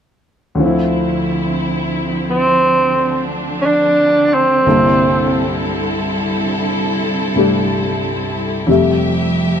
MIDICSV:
0, 0, Header, 1, 4, 480
1, 0, Start_track
1, 0, Key_signature, -1, "minor"
1, 0, Tempo, 1016949
1, 277, Time_signature, 4, 2, 24, 8
1, 2676, Tempo, 1005025
1, 4553, End_track
2, 0, Start_track
2, 0, Title_t, "String section"
2, 0, Program_c, 0, 48
2, 278, Note_on_c, 0, 50, 47
2, 281, Note_on_c, 0, 53, 50
2, 281, Note_on_c, 0, 64, 49
2, 282, Note_on_c, 0, 60, 48
2, 1230, Note_off_c, 0, 64, 0
2, 1238, Note_on_c, 0, 62, 55
2, 2180, Note_off_c, 0, 53, 0
2, 2187, Note_off_c, 0, 62, 0
2, 2202, Note_on_c, 0, 55, 52
2, 2203, Note_on_c, 0, 69, 54
2, 2204, Note_on_c, 0, 64, 47
2, 4097, Note_off_c, 0, 50, 0
2, 4099, Note_off_c, 0, 55, 0
2, 4099, Note_off_c, 0, 60, 0
2, 4100, Note_off_c, 0, 64, 0
2, 4100, Note_off_c, 0, 69, 0
2, 4107, Note_on_c, 0, 76, 50
2, 4109, Note_on_c, 0, 67, 56
2, 4111, Note_on_c, 0, 53, 51
2, 4112, Note_on_c, 0, 57, 47
2, 4553, Note_off_c, 0, 53, 0
2, 4553, Note_off_c, 0, 57, 0
2, 4553, Note_off_c, 0, 67, 0
2, 4553, Note_off_c, 0, 76, 0
2, 4553, End_track
3, 0, Start_track
3, 0, Title_t, "Tenor saxophone"
3, 0, Program_c, 1, 66
3, 1086, Note_on_c, 1, 60, 83
3, 1545, Note_off_c, 1, 60, 0
3, 1706, Note_on_c, 1, 61, 58
3, 1725, Note_on_c, 1, 62, 72
3, 1733, Note_off_c, 1, 61, 0
3, 2047, Note_on_c, 1, 60, 65
3, 2054, Note_off_c, 1, 62, 0
3, 2677, Note_off_c, 1, 60, 0
3, 4553, End_track
4, 0, Start_track
4, 0, Title_t, "Grand piano"
4, 0, Program_c, 2, 0
4, 259, Note_on_c, 2, 38, 38
4, 269, Note_on_c, 2, 50, 38
4, 283, Note_on_c, 2, 53, 37
4, 299, Note_on_c, 2, 60, 37
4, 310, Note_on_c, 2, 64, 40
4, 359, Control_c, 2, 64, 127
4, 2188, Note_off_c, 2, 38, 0
4, 2193, Note_off_c, 2, 50, 0
4, 2199, Note_off_c, 2, 53, 0
4, 2200, Note_on_c, 2, 36, 41
4, 2201, Note_off_c, 2, 64, 0
4, 2202, Control_c, 2, 64, 0
4, 2202, Note_on_c, 2, 43, 40
4, 2203, Note_on_c, 2, 50, 38
4, 2205, Note_on_c, 2, 58, 37
4, 2207, Note_off_c, 2, 60, 0
4, 2207, Note_on_c, 2, 69, 46
4, 2208, Note_on_c, 2, 64, 40
4, 2289, Control_c, 2, 64, 127
4, 3473, Note_off_c, 2, 43, 0
4, 3480, Note_on_c, 2, 43, 31
4, 3481, Note_on_c, 2, 48, 28
4, 3487, Note_on_c, 2, 57, 29
4, 3489, Note_on_c, 2, 62, 29
4, 3494, Note_on_c, 2, 67, 33
4, 4108, Note_off_c, 2, 48, 0
4, 4109, Note_on_c, 2, 41, 45
4, 4115, Note_off_c, 2, 43, 0
4, 4115, Note_on_c, 2, 48, 39
4, 4117, Note_off_c, 2, 36, 0
4, 4118, Note_off_c, 2, 50, 0
4, 4119, Note_off_c, 2, 57, 0
4, 4120, Note_off_c, 2, 58, 0
4, 4120, Note_off_c, 2, 62, 0
4, 4120, Note_off_c, 2, 69, 0
4, 4121, Note_off_c, 2, 64, 0
4, 4122, Note_off_c, 2, 67, 0
4, 4122, Control_c, 2, 64, 0
4, 4122, Note_on_c, 2, 55, 34
4, 4126, Note_on_c, 2, 57, 34
4, 4130, Note_on_c, 2, 76, 45
4, 4210, Control_c, 2, 64, 127
4, 4553, Note_off_c, 2, 41, 0
4, 4553, Note_off_c, 2, 48, 0
4, 4553, Note_off_c, 2, 55, 0
4, 4553, Note_off_c, 2, 57, 0
4, 4553, Note_off_c, 2, 76, 0
4, 4553, End_track
0, 0, End_of_file